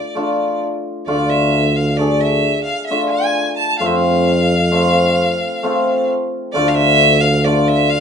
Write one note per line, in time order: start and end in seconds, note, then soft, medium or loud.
0.00 0.61 D5 medium
0.15 0.61 A3 medium
0.15 0.62 D4 medium
0.15 0.62 F4 medium
1.07 2.72 D2 medium
1.07 1.53 A3 medium
1.07 1.53 D4 medium
1.07 1.53 F4 medium
1.07 1.31 D5 medium
1.30 1.77 E5 medium
1.76 1.98 F5 medium
1.97 2.44 A3 medium
1.97 2.45 D4 medium
1.97 2.45 G#4 medium
1.97 2.22 D5 medium
2.20 2.63 E5 medium
2.63 2.86 F5 medium
2.86 3.08 E5 medium
2.91 3.36 A3 medium
2.91 3.36 D4 medium
2.91 3.36 F4 medium
3.09 3.53 G#5 medium
3.57 3.78 A5 medium
3.78 5.45 F2 loud
3.78 4.26 A3 medium
3.78 4.27 C4 medium
3.78 4.27 F4 medium
3.78 3.87 F5 medium
3.86 3.97 E5 medium
3.95 6.09 F5 loud
4.72 5.18 A3 medium
4.72 5.17 C4 medium
4.72 5.18 F4 medium
5.63 6.09 A3 medium
5.63 6.09 C4 medium
5.63 6.09 F4 medium
6.52 8.00 D2 loud
6.52 7.00 A3 medium
6.52 7.00 D4 medium
6.52 7.00 F4 loud
6.52 6.69 D5 loud
6.68 6.76 F5 medium
6.75 7.22 E5 loud
7.20 7.45 F5 loud
7.44 7.91 A3 medium
7.44 7.91 D4 medium
7.44 7.92 F4 medium
7.44 7.69 D5 medium
7.68 7.91 E5 medium
7.89 8.00 F5 loud